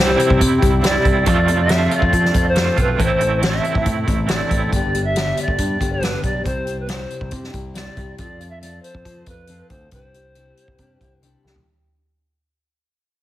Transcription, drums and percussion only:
0.19 closed hi-hat
0.30 kick
0.41 kick, closed hi-hat
0.62 kick, closed hi-hat
0.84 snare, closed hi-hat
1.05 kick, closed hi-hat
1.26 kick, closed hi-hat
1.48 closed hi-hat
1.69 snare, closed hi-hat
1.91 closed hi-hat
2.02 kick
2.13 kick, closed hi-hat
2.25 snare
2.34 kick, closed hi-hat
2.55 snare, closed hi-hat
2.77 kick, closed hi-hat
3.00 kick, closed hi-hat
3.20 closed hi-hat
3.42 snare, closed hi-hat
3.64 closed hi-hat
3.75 kick
3.86 kick, closed hi-hat
4.08 kick, closed hi-hat
4.28 snare, closed hi-hat
4.51 kick, closed hi-hat
4.73 kick, closed hi-hat
4.95 closed hi-hat
5.16 snare, closed hi-hat
5.37 closed hi-hat
5.48 kick
5.58 kick, closed hi-hat
5.81 kick, closed hi-hat
6.02 snare, closed hi-hat
6.23 kick, closed hi-hat
6.46 kick, closed hi-hat
6.67 closed hi-hat
6.88 snare, closed hi-hat
7.10 closed hi-hat
7.21 kick
7.31 kick, closed hi-hat
7.44 snare
7.54 kick, closed hi-hat
7.75 snare, closed hi-hat
7.97 kick, closed hi-hat
8.18 kick, closed hi-hat
8.41 closed hi-hat
8.62 closed hi-hat
8.84 closed hi-hat
8.95 kick
9.05 kick, closed hi-hat
9.26 kick, closed hi-hat
9.47 closed hi-hat
9.70 kick, closed hi-hat
9.91 kick, closed hi-hat
10.14 closed hi-hat
10.35 closed hi-hat
10.57 closed hi-hat
10.68 kick
10.78 kick, closed hi-hat
11.01 kick, closed hi-hat
11.23 closed hi-hat
11.47 snare
11.56 floor tom

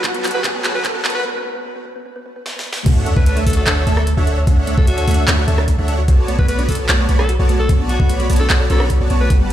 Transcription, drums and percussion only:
0.04 kick, clap, closed hi-hat
0.14 closed hi-hat
0.24 clap, closed hi-hat, open hi-hat
0.31 closed hi-hat
0.44 kick, clap, closed hi-hat
0.64 clap, closed hi-hat
0.85 kick, clap, closed hi-hat
1.05 clap, closed hi-hat
1.10 closed hi-hat
2.46 snare
2.59 snare
2.73 snare
2.86 kick, closed hi-hat, crash
3.06 closed hi-hat
3.17 kick
3.26 closed hi-hat
3.37 closed hi-hat
3.46 kick, closed hi-hat, open hi-hat
3.53 closed hi-hat
3.67 clap, closed hi-hat
3.87 closed hi-hat
3.97 cross-stick
4.07 closed hi-hat
4.27 closed hi-hat
4.47 kick, closed hi-hat
4.67 closed hi-hat
4.78 kick
4.87 closed hi-hat
4.98 closed hi-hat
5.08 closed hi-hat, open hi-hat
5.14 closed hi-hat
5.28 clap, closed hi-hat
5.48 closed hi-hat
5.58 cross-stick
5.68 kick, closed hi-hat
5.88 closed hi-hat
6.08 kick, closed hi-hat
6.28 closed hi-hat
6.39 kick
6.48 closed hi-hat
6.59 closed hi-hat
6.69 kick, closed hi-hat, open hi-hat
6.75 closed hi-hat
6.89 clap, closed hi-hat
7.09 closed hi-hat
7.19 cross-stick
7.29 closed hi-hat
7.49 closed hi-hat
7.69 kick, closed hi-hat
7.89 closed hi-hat
8.00 kick
8.10 closed hi-hat
8.20 closed hi-hat
8.30 closed hi-hat, open hi-hat
8.36 closed hi-hat
8.50 clap, closed hi-hat
8.70 closed hi-hat
8.80 cross-stick
8.90 kick, closed hi-hat
9.10 closed hi-hat
9.30 kick, closed hi-hat

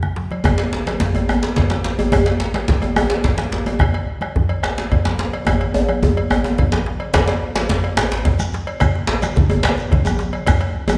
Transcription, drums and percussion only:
0.03 bombo rim, low conga
0.16 djembe slap, high conga
0.30 bombo rim, cowbell, djembe slap, high conga
0.44 bombo rim, bombo low, cowbell, djembe tone, djembe bass, low conga
0.58 cowbell, djembe slap
0.73 djembe slap, high conga
0.87 bombo rim, cowbell, djembe slap, high conga
1.00 djembe slap, high conga, djembe tone, low conga, djembe bass
1.15 bombo rim, cowbell, djembe tone
1.29 bombo rim, cowbell, djembe tone
1.43 djembe slap
1.56 bombo low, cowbell, djembe slap, djembe tone, low conga, djembe bass
1.70 bombo rim, djembe slap, high conga
1.84 djembe slap
1.99 bombo rim, cowbell, djembe tone
2.12 bombo rim, bombo low, cowbell, djembe tone, low conga
2.14 djembe tone, djembe bass
2.26 cowbell, djembe slap
2.40 djembe slap, high conga
2.54 bombo rim, cowbell, djembe slap, high conga
2.68 bombo low, djembe slap, high conga, djembe tone, low conga
2.82 bombo rim, cowbell, djembe tone
2.96 bombo rim, cowbell, djembe tone
3.10 djembe slap
3.24 bombo low, cowbell, djembe slap, low conga, djembe bass
3.38 bombo rim, djembe slap, high conga
3.52 djembe slap
3.66 bombo rim, cowbell, djembe tone
3.79 bombo rim, bombo low, cowbell, djembe tone, low conga, djembe bass
3.94 cowbell, djembe slap
4.07 high conga
4.21 bombo rim, cowbell, high conga
4.35 bombo low, djembe slap, high conga, djembe tone, djembe bass
4.49 bombo rim, cowbell
4.63 bombo rim, cowbell, djembe slap
4.78 djembe slap
4.92 bombo low, cowbell, djembe tone, low conga, djembe bass
5.05 bombo rim, djembe slap, high conga
5.19 djembe slap
5.33 bombo rim, cowbell
5.47 bombo rim, bombo low, cowbell, high conga, djembe tone, low conga, djembe bass
5.61 bombo rim, cowbell, djembe slap, high conga
5.74 djembe tone
5.89 bombo rim, cowbell, high conga
6.03 bombo low, djembe slap, djembe tone, low conga, djembe bass
6.17 cowbell
6.30 bombo rim, cowbell, high conga, djembe tone
6.44 djembe slap, djembe tone
6.58 bombo low, cowbell, djembe slap, djembe tone, low conga, djembe bass
6.72 bombo rim, djembe slap, high conga
6.86 djembe slap
7.00 cowbell, djembe slap
7.14 bombo rim, bombo low, cowbell, djembe slap, djembe tone, low conga, djembe bass, shekere
7.28 cowbell, djembe slap
7.42 high conga
7.56 bombo rim, cowbell, djembe slap, high conga, shekere
7.69 djembe slap, high conga, djembe tone, low conga, djembe bass
7.84 bombo rim, cowbell
7.97 bombo rim, cowbell, djembe slap, shekere
8.11 djembe slap, shekere
8.25 bombo low, cowbell, djembe tone, low conga, djembe bass
8.39 bombo rim, high conga, shekere
8.53 djembe slap, shekere
8.67 bombo rim, cowbell
8.80 bombo rim, bombo low, cowbell, djembe tone, low conga, djembe bass, shekere
8.95 djembe slap
9.07 djembe slap
9.22 bombo rim, cowbell, high conga, shekere
9.36 bombo low, djembe slap, djembe tone, high conga, djembe bass, low conga
9.50 bombo rim, cowbell, djembe tone
9.63 bombo rim, cowbell, djembe slap, shekere
9.78 djembe slap, shekere
9.91 bombo low, cowbell, djembe tone, djembe bass, low conga
10.05 bombo rim, djembe tone, high conga, shekere
10.19 djembe slap, shekere
10.33 bombo rim, cowbell
10.46 bombo rim, bombo low, cowbell, djembe tone, low conga, djembe bass, shekere
10.61 cowbell, djembe slap
10.75 high conga
10.88 bombo rim, cowbell, djembe tone, high conga, shekere

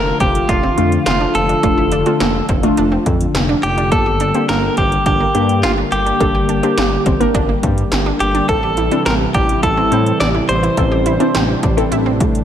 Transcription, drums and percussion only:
0.20 kick, closed hi-hat
0.35 closed hi-hat
0.49 kick, closed hi-hat
0.78 closed hi-hat
0.92 closed hi-hat
1.06 snare, closed hi-hat
1.35 closed hi-hat
1.49 closed hi-hat
1.63 kick, closed hi-hat
1.92 closed hi-hat
2.06 closed hi-hat
2.20 snare, closed hi-hat
2.49 kick, closed hi-hat
2.63 closed hi-hat
2.77 closed hi-hat
3.06 kick, closed hi-hat
3.21 closed hi-hat
3.35 snare, closed hi-hat
3.63 closed hi-hat
3.78 closed hi-hat
3.92 kick, closed hi-hat
4.20 closed hi-hat
4.34 closed hi-hat
4.49 snare, closed hi-hat
4.77 kick, closed hi-hat
4.92 closed hi-hat
5.06 kick, closed hi-hat
5.35 closed hi-hat
5.49 closed hi-hat
5.63 snare, closed hi-hat
5.92 closed hi-hat
6.07 closed hi-hat
6.20 kick, closed hi-hat
6.49 closed hi-hat
6.63 closed hi-hat
6.78 snare, closed hi-hat
7.06 kick, closed hi-hat
7.21 closed hi-hat
7.34 kick, closed hi-hat
7.63 kick, closed hi-hat
7.78 closed hi-hat
7.92 snare, closed hi-hat
8.20 closed hi-hat
8.35 closed hi-hat
8.49 kick, closed hi-hat
8.77 closed hi-hat
8.91 closed hi-hat
9.06 snare, closed hi-hat
9.34 kick, closed hi-hat
9.49 closed hi-hat
9.63 kick, closed hi-hat
9.92 closed hi-hat
10.06 closed hi-hat
10.20 snare, closed hi-hat
10.49 closed hi-hat
10.64 closed hi-hat
10.77 kick, closed hi-hat
11.06 closed hi-hat
11.20 closed hi-hat
11.35 snare, closed hi-hat
11.63 kick, closed hi-hat
11.78 closed hi-hat
11.92 closed hi-hat
12.20 kick, closed hi-hat
12.35 closed hi-hat

